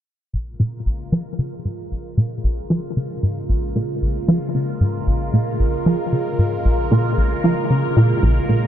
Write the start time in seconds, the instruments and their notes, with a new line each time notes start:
0.33 analog synth bass A#1, analog synth pad C#3 G#3 A#3 F4 A#4
0.60 analog synth bass A#2
0.86 analog synth bass A#1
1.12 analog synth bass F3
1.39 analog synth bass C#3
1.65 analog synth bass G#2
1.91 analog synth bass A#1
2.17 analog synth bass A#2
2.44 analog synth bass A#1
2.70 analog synth bass F3
2.97 analog synth bass C#3
3.23 analog synth bass G#2
3.49 analog synth bass A#1
3.75 analog synth bass A#2
4.02 analog synth bass A#1
4.28 analog synth bass F3
4.54 analog synth bass C#3
4.81 analog synth bass G#2
5.07 analog synth bass A#1
5.33 analog synth bass A#2
5.60 analog synth bass A#1
5.86 analog synth bass F3
6.12 analog synth bass C#3
6.39 analog synth bass G#2
6.65 analog synth bass A#1
6.91 analog synth bass A#2
7.18 analog synth bass A#1
7.44 analog synth bass F3
7.70 analog synth bass C#3
7.96 analog synth bass A#2
8.23 analog synth bass A#1
8.49 analog synth bass A#2